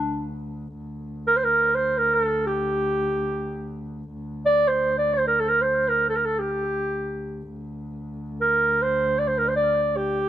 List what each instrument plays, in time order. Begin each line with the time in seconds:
Already playing: double bass D2, clarinet D4
0.77 double bass D2
1.27 clarinet A#4
1.37 clarinet C5
1.44 clarinet A#4
1.75 clarinet C5
1.98 clarinet A#4
2.14 clarinet A4
2.47 clarinet G4
4.13 double bass D2
4.46 clarinet D5
4.68 clarinet C5
4.98 clarinet D5
5.14 clarinet C5
5.27 clarinet A#4
5.40 clarinet A4
5.49 clarinet A#4
5.62 clarinet C5
5.88 clarinet A#4
6.09 clarinet A4
6.16 clarinet A#4
6.25 clarinet A4
6.39 clarinet G4
7.49 double bass D2
8.41 clarinet A#4
8.82 clarinet C5
9.19 clarinet D5
9.27 clarinet C5
9.38 clarinet A#4
9.48 clarinet C5
9.56 clarinet D5
9.96 clarinet G4